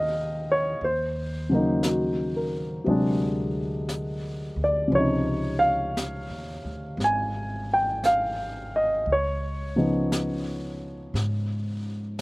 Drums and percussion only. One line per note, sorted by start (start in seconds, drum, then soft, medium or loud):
0.80 brush sweep soft
1.83 brush sweep soft
1.83 snare soft
1.83 hi-hat pedal soft
2.86 brush sweep soft
3.89 brush sweep soft
3.89 snare soft
3.89 hi-hat pedal soft
4.93 brush sweep soft
5.97 brush sweep soft
5.97 snare soft
5.97 hi-hat pedal soft
7.00 brush sweep soft
7.00 snare soft
8.04 brush sweep soft
8.04 snare soft
8.04 hi-hat pedal soft
9.07 brush sweep soft
10.12 brush sweep soft
10.12 snare soft
10.12 hi-hat pedal soft
11.15 brush sweep soft
11.15 snare soft